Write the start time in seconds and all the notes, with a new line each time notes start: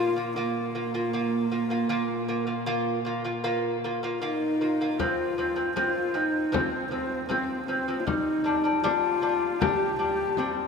Already playing: A#2 A#3 F4
0.00 F4
0.16 A#3 F4
0.36 A#3 F4
0.75 A#3 F4
0.94 A#3 F4
1.13 A#3 F4
1.51 A#3 F4
1.70 A#3 F4
1.89 A#3 F4
2.28 A#3 F4
2.47 A#3 F4
2.66 A#3 F4
3.05 A#3 F4
3.24 A#3 F4
3.44 A#3 F4
3.84 A#3 F4
4.03 A#3 F4
4.22 A#3 D#4 F4
4.61 A#3 F4
4.81 A#3 F4
4.99 F3 C4 F4, frame drum
5.38 F3 C4, frame drum
5.56 F3 C4, frame drum
5.76 F3 C4 F4, frame drum
6.14 F3 C4 D#4
6.52 F3 C4, frame drum
6.91 F3 C4
7.12 frame drum
7.29 F3 C4, frame drum
7.67 F3 C4
7.88 F3 C4
8.00 F4
8.05 G3 D#4, frame drum
8.44 G3 D4, frame drum
8.64 G3 D4, frame drum
8.83 G3 D4 F4, frame drum
9.22 G3 D4
9.59 G3 D4 G4, frame drum
9.99 G3 D4 G4
10.19 frame drum
10.37 G3 C4 D4, frame drum